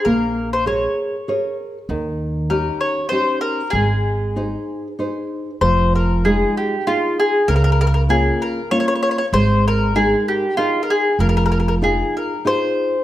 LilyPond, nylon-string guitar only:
\new Staff \with { instrumentName = "Nylon-string guitar" } { \time 3/4 \key aes \major \tempo 4 = 97 bes4 <aes' bes' des''>4 <aes' bes' des''>4 | ees4 <des' ees' g'>4 <des' ees' g'>4 | aes4 <ees' aes' c''>4 <ees' aes' c''>4 | \key f \minor f4 <aes ees' f'>4 <ees' f' aes'>4 |
des4 <bes des' f'>4 <bes des' f'>4 | aes4 <aes ees' bes'>4 <ees' aes' bes'>4 | f4 <ees' f' aes'>4 <ees' f' aes'>4 | }